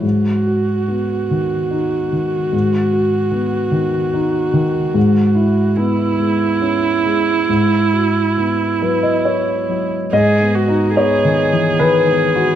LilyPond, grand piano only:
<<
  \new Staff \with { instrumentName = "Grand piano" } { \time 3/4 \key gis \minor \tempo 4 = 72 r2. | r2. | r2. | r4. b'16 dis''16 cis''4 |
dis''4 cis''4 b'4 | }
  \new Staff \with { instrumentName = "Grand piano" } { \time 3/4 \key gis \minor gis,8 fis'8 b8 dis8 dis'8 dis8 | gis,8 fis'8 b8 dis8 dis'8 dis8 | gis,8 e'8 b8 gis8 cis'8 gis8 | gis,8 fis'8 b8 fis8 e'8 fis8 |
\tuplet 3/2 { gis,8 b8 dis'8 b8 dis8 e8 dis8 b8 fis'8 } | }
>>